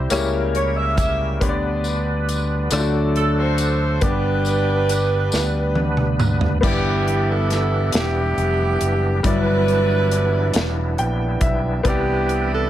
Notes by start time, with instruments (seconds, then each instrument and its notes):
Already playing: grand piano C3 C4 E4 G4 E5, tonewheel organ C4 C5
0.10 fingered electric bass C#2, grand piano C#3 A#3 E4 G4 C#5, tonewheel organ G3 C#4 E4 A#4, cross-stick, closed hi-hat, tambourine
0.55 saxophone section C#5, closed hi-hat
0.77 saxophone section E5
0.97 saxophone section E5, kick, closed hi-hat, tambourine
1.41 fingered electric bass D2, grand piano D3 B3 D4 G4 C#5, tonewheel organ G3 B3 D4 B4, kick, closed hi-hat
1.49 grand piano D5
1.84 closed hi-hat, tambourine
2.29 closed hi-hat, tambourine
2.71 fingered electric bass D2, grand piano D3 A3 D4 F4 D5, tonewheel organ F#3 A3 D4 G#4, cross-stick, closed hi-hat, tambourine
2.78 grand piano F#4, tonewheel organ A4
3.16 saxophone section A4, closed hi-hat
3.38 saxophone section F#4 A4 C5
3.58 closed hi-hat, tambourine
4.01 fingered electric bass G1, grand piano G2 B3 D4 G4 D5, tonewheel organ G3 B3 D4 B4, saxophone section D4 G4 B4, kick, closed hi-hat
4.45 closed hi-hat, tambourine
4.89 cross-stick, closed hi-hat, tambourine
5.32 fingered electric bass D2, snare, tambourine
5.75 high tom
5.97 mid tom
6.19 mid tom, tambourine
6.41 floor tom
6.61 fingered electric bass G1, grand piano G2 B3 E4 G4 D5, tonewheel organ E3 B3 D4 G4, kick, crash
6.65 saxophone section B3 E4 G4
7.08 closed hi-hat
7.31 saxophone section A4
7.50 saxophone section A4, snare, closed hi-hat
7.92 fingered electric bass E1, saxophone section B3 E4, snare, closed hi-hat
7.97 saxophone section G4
8.37 fingered electric bass F1, closed hi-hat
8.81 fingered electric bass F#1, closed hi-hat
9.23 fingered electric bass G1, grand piano G2 F#3 G3 E4 D5, tonewheel organ E3 B3 D4 E4, saxophone section D4 E4, kick, closed hi-hat
9.28 saxophone section B4
9.68 closed hi-hat
10.11 closed hi-hat
10.54 fingered electric bass E1, snare, closed hi-hat
10.98 fingered electric bass A#1, grand piano G5, closed hi-hat
11.41 fingered electric bass B1, grand piano E5, kick, closed hi-hat
11.83 fingered electric bass C2, tonewheel organ C3 E3 D4 A#4, grand piano C3 B3 E4 B4 D5, saxophone section B3 E4, kick, closed hi-hat
11.88 saxophone section G4, tonewheel organ B4
12.29 closed hi-hat
12.52 saxophone section A4